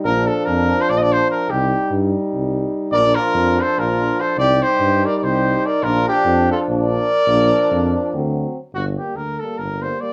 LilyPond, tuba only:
\new Staff \with { instrumentName = "Tuba" } { \clef bass \time 7/8 \key bes \major \tempo 4 = 145 bes,,4 f,4 bes,,4. | c,4 g,4 c,4. | bes,,4 f,4 bes,,4. | c,4 g,4 c,4. |
bes,,4 f,4 bes,,4. | bes,,4 f,4 d,4. | \key g \minor g,,4 d,4 g,,4. | }